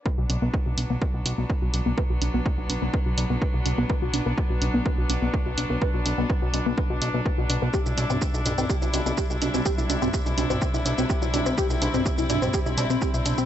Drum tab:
HH |--x---x---x---x-|--x---x---x---x-|--x---x---x---x-|--x---x---x---x-|
SH |----------------|----------------|----------------|----------------|
T2 |----------------|----------------|----------------|----------------|
BD |o---o---o---o---|o---o---o---o---|o---o---o---o---|o---o---o---o---|

HH |--x---x---x---x-|--x---x---x---x-|--x---x---x---x-|
SH |xxxxxxxxxxxxxxxx|xxxxxxxxxxxxxxxx|xxxxxxxxxxxxxxxx|
T2 |---o--oo--------|---o---o--------|---o--oo--------|
BD |o---o---o---o---|o---o---o---o---|o---o---o---o---|